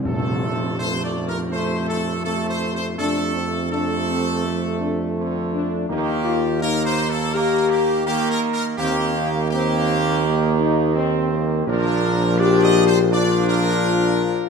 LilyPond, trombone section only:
\new Staff \with { instrumentName = "Trombone section" } { \clef bass \time 4/4 \key f \mixolydian \tempo 4 = 83 << { a4 a4 a4 a4 | a4 a2. | bes4 bes4 bes4 bes4 | bes4 bes2 c'4 |
d'4 d'4 d'2 | } \\ { c4 c4 c4 c4 | c4 c2 d4 | ees4 ees4 ees4 ees4 | ees4 ees2. |
f4 f4 f2 | } >> }